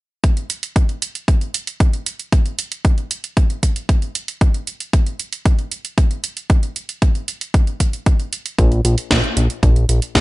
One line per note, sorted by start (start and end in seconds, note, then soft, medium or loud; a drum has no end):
0.24 kick loud
0.24 closed hi-hat soft
0.37 closed hi-hat soft
0.50 closed hi-hat medium
0.63 closed hi-hat medium
0.76 kick loud
0.76 closed hi-hat medium
0.89 closed hi-hat soft
1.02 closed hi-hat medium
1.15 closed hi-hat medium
1.28 kick loud
1.28 closed hi-hat medium
1.41 closed hi-hat soft
1.54 closed hi-hat medium
1.67 closed hi-hat medium
1.80 kick loud
1.80 closed hi-hat medium
1.93 closed hi-hat soft
2.06 closed hi-hat medium
2.19 closed hi-hat medium
2.32 kick loud
2.32 closed hi-hat soft
2.46 closed hi-hat soft
2.59 closed hi-hat medium
2.72 closed hi-hat soft
2.85 kick loud
2.85 closed hi-hat soft
2.98 closed hi-hat soft
3.11 closed hi-hat medium
3.24 closed hi-hat medium
3.37 kick loud
3.37 closed hi-hat soft
3.50 closed hi-hat soft
3.63 kick medium
3.63 closed hi-hat medium
3.76 closed hi-hat medium
3.89 kick loud
3.89 closed hi-hat soft
4.02 closed hi-hat soft
4.15 closed hi-hat medium
4.28 closed hi-hat medium
4.41 kick loud
4.41 closed hi-hat soft
4.54 closed hi-hat soft
4.67 closed hi-hat medium
4.80 closed hi-hat soft
4.93 kick loud
4.93 closed hi-hat soft
5.06 closed hi-hat soft
5.20 closed hi-hat medium
5.33 closed hi-hat medium
5.46 kick loud
5.46 closed hi-hat soft
5.59 closed hi-hat soft
5.72 closed hi-hat medium
5.85 closed hi-hat soft
5.98 kick loud
5.98 closed hi-hat soft
6.11 closed hi-hat soft
6.24 closed hi-hat medium
6.37 closed hi-hat soft
6.50 kick loud
6.50 closed hi-hat soft
6.63 closed hi-hat soft
6.76 closed hi-hat medium
6.89 closed hi-hat soft
7.02 kick loud
7.02 closed hi-hat soft
7.15 closed hi-hat soft
7.28 closed hi-hat medium
7.41 closed hi-hat soft
7.54 kick loud
7.54 closed hi-hat soft
7.67 closed hi-hat soft
7.80 kick medium
7.80 closed hi-hat medium
7.93 closed hi-hat soft
8.06 kick loud
8.06 closed hi-hat soft
8.20 closed hi-hat soft
8.33 closed hi-hat medium
8.46 closed hi-hat soft
8.58 8.81 A#1 loud
8.58 kick loud
8.58 closed hi-hat soft
8.72 closed hi-hat soft
8.85 8.96 A#1 medium
8.85 closed hi-hat medium
8.98 closed hi-hat soft
9.11 9.22 A#1 loud
9.11 kick loud
9.11 snare loud
9.11 closed hi-hat soft
9.24 closed hi-hat soft
9.37 9.48 A#1 medium
9.37 closed hi-hat medium
9.50 closed hi-hat soft
9.63 9.85 A#1 medium
9.63 kick loud
9.63 closed hi-hat soft
9.76 closed hi-hat soft
9.89 10.00 A#1 medium
9.89 closed hi-hat medium
10.02 closed hi-hat soft
10.15 10.21 A#1 loud
10.15 kick loud
10.15 snare loud
10.15 closed hi-hat soft